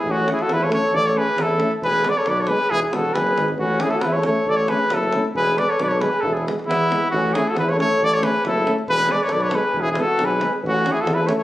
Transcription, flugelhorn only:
X:1
M:2/4
L:1/16
Q:1/4=136
K:A
V:1 name="Flugelhorn"
C2 E F E A A2 | A A G2 E3 z | G2 B A B A G2 | E E F2 G3 z |
C2 E F E A A2 | A A G2 E3 z | G2 B A B A G2 | E E z2 B,4 |
C2 E F E A A2 | A A G2 E3 z | G2 B A B A G2 | E E F2 G3 z |
C2 E F E A A2 |]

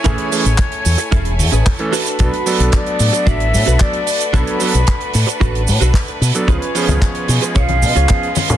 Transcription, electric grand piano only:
X:1
M:4/4
L:1/16
Q:1/4=112
K:Bdor
V:1 name="Electric grand piano"
[E,A,CG]2 [E,A,CG] z8 z2 [E,A,CA] z2 | [F,B,DA] z [F,B,DA]8- [F,B,DA]2 [F,B,DA] z3 | [F,B,DA]2 [F,B,DA] z12 [F,B,DA] | [^E,CG] z [E,B,CG]8- [E,B,CG]2 [E,B,CG] z3 |]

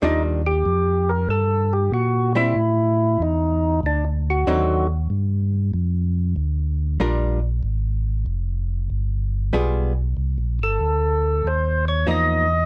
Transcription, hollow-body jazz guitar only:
X:1
M:4/4
L:1/8
Q:"Swing" 1/4=95
K:Eb
V:1 name="Hollow-body jazz guitar"
[E,G,DF] z6 [G,C_F] | z6 [D,^F,CE] z | z6 [G,DFB] z | z6 [G,=B,FA] z |
z6 [F,B,E] z |]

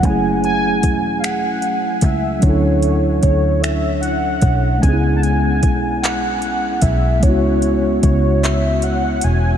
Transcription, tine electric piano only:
X:1
M:6/8
L:1/8
Q:3/8=50
K:C#phr
V:1 name="Tine electric piano"
[F,A,CEG]6 | [F,CDEA]6 | [G,B,CDEG]6 | [G,B,CEF]6 |]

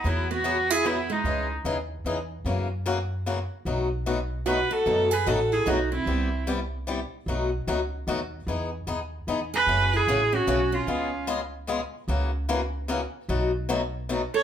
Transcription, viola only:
X:1
M:3/4
L:1/8
Q:"Swing" 1/4=150
K:E
V:1 name="Viola"
E F2 G E D- | D z4 z | z6 | z4 B A- |
A B A G F E- | E2 z4 | z6 | z4 z B- |
B G2 F2 =F- | =F2 z4 | z6 | z4 z c |]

